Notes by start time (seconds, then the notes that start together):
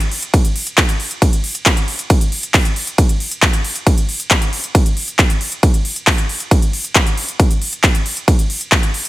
0.00 closed hi-hat
0.12 open hi-hat
0.23 closed hi-hat
0.34 kick, closed hi-hat, ride
0.45 closed hi-hat
0.56 open hi-hat
0.67 closed hi-hat
0.78 kick, clap, closed hi-hat, ride
0.89 closed hi-hat
1.00 open hi-hat
1.11 closed hi-hat
1.22 kick, closed hi-hat, ride
1.33 closed hi-hat
1.44 open hi-hat
1.55 closed hi-hat
1.66 kick, clap, closed hi-hat, ride
1.77 closed hi-hat
1.88 open hi-hat
1.99 closed hi-hat
2.10 kick, closed hi-hat, ride
2.21 closed hi-hat
2.32 open hi-hat
2.43 closed hi-hat
2.54 kick, clap, open hi-hat, ride
2.65 closed hi-hat
2.76 open hi-hat
2.87 closed hi-hat
2.98 kick, closed hi-hat, ride
3.09 closed hi-hat
3.20 open hi-hat
3.31 closed hi-hat
3.42 kick, clap, closed hi-hat, ride
3.53 closed hi-hat
3.64 open hi-hat
3.75 closed hi-hat
3.87 kick, closed hi-hat, ride
3.98 closed hi-hat
4.09 open hi-hat
4.20 closed hi-hat
4.31 kick, clap, closed hi-hat, ride
4.42 closed hi-hat
4.53 open hi-hat
4.64 closed hi-hat
4.75 kick, closed hi-hat, ride
4.86 closed hi-hat
4.97 open hi-hat
5.08 closed hi-hat
5.19 kick, clap, closed hi-hat, ride
5.30 closed hi-hat
5.41 open hi-hat
5.52 closed hi-hat
5.63 kick, closed hi-hat, ride
5.74 closed hi-hat
5.85 open hi-hat
5.96 closed hi-hat
6.07 kick, clap, open hi-hat, ride
6.18 closed hi-hat
6.29 open hi-hat
6.40 closed hi-hat
6.51 kick, closed hi-hat, ride
6.62 closed hi-hat
6.73 open hi-hat
6.85 closed hi-hat
6.95 kick, clap, closed hi-hat, ride
7.07 closed hi-hat
7.17 open hi-hat
7.29 closed hi-hat
7.40 kick, closed hi-hat, ride
7.51 closed hi-hat
7.62 open hi-hat
7.73 closed hi-hat
7.84 kick, clap, closed hi-hat, ride
7.95 closed hi-hat
8.06 open hi-hat
8.17 closed hi-hat
8.28 kick, closed hi-hat, ride
8.39 closed hi-hat
8.50 open hi-hat
8.61 closed hi-hat
8.72 kick, clap, closed hi-hat, ride
8.83 closed hi-hat
8.94 open hi-hat
9.05 closed hi-hat